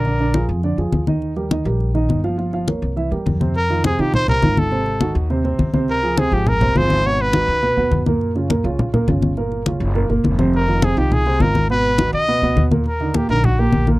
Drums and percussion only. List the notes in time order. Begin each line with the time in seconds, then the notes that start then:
0.05 high conga
0.19 high conga
0.34 high conga
0.49 high conga
0.63 high conga
0.78 high conga
0.92 high conga
1.07 high conga
1.22 high conga
1.36 high conga
1.51 high conga
1.66 high conga
1.80 high conga
1.95 high conga
2.10 high conga
2.24 high conga
2.39 high conga
2.53 high conga
2.68 high conga
2.83 high conga
2.97 high conga
3.12 high conga
3.27 high conga
3.41 high conga
3.55 high conga
3.70 high conga
3.84 high conga
3.99 high conga
4.14 high conga, low conga
4.28 high conga, low conga
4.42 high conga
4.57 high conga
4.72 high conga
4.86 high conga
5.01 high conga
5.15 high conga
5.30 high conga
5.45 high conga
5.59 high conga
5.74 high conga
5.88 high conga
6.03 high conga
6.18 high conga
6.32 high conga
6.46 high conga, low conga
6.61 high conga, low conga
6.76 high conga
6.90 high conga
7.05 high conga
7.19 high conga
7.33 high conga
7.48 high conga
7.62 high conga
7.77 high conga
7.92 high conga
8.06 high conga
8.21 high conga
8.36 high conga
8.50 high conga
8.65 high conga
8.79 high conga, low conga
8.94 high conga, low conga
9.08 high conga
9.22 high conga
9.37 high conga
9.52 high conga
9.66 high conga
9.81 high conga
9.95 high conga
10.10 high conga
10.24 high conga
10.39 high conga
10.53 high conga
10.68 high conga
10.82 high conga
10.97 high conga
11.12 high conga, low conga
11.26 high conga
11.40 high conga
11.55 high conga
11.70 high conga
11.84 high conga
11.98 high conga
12.13 high conga
12.27 high conga
12.42 high conga
12.57 high conga
12.71 high conga
12.86 high conga
13.00 high conga
13.14 high conga
13.29 high conga
13.44 high conga, low conga
13.58 high conga
13.72 high conga
13.87 high conga